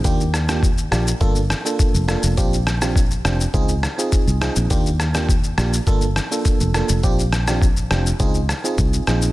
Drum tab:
SH |xxxxxxxxxxxxxxxx|xxxxxxxxxxxxxxxx|xxxxxxxxxxxxxxxx|xxxxxxxxxxxxxxxx|
SD |--rr--r---r---r-|--rr--r---r---r-|--rr--r---r---r-|--rr--r---r---r-|
BD |o---o---o---o---|o---o---o---o---|o---o---o---o---|o---o---o---o---|